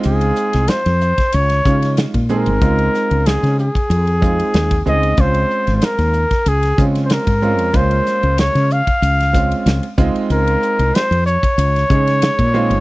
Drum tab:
RD |xx-xxx-xxx-xxx-x|xx-xxx-xxx-xxx-x|xx-xxx-xxx-xxx-x|xx-xxx-xxx-xxx-x|
HH |p-p-p-p-p-p-p-p-|p-p-p-p-p-p-p-p-|p-p-p-p-p-p-p-p-|p-p-p-p-p-p-p-p-|
SD |---ooo-o-o-oo---|--o-oo------o---|---ooo-o-o-oo---|--o-oo---o--o---|
BD |-------o--o--o--|o------o--o--o--|o------o--o--o--|o------o--o---o-|

RD |xx-xxx-xxx-xxx-x|
HH |p-p-p-p-p-p-p-p-|
SD |----o----o-oo---|
BD |-------o--o--o--|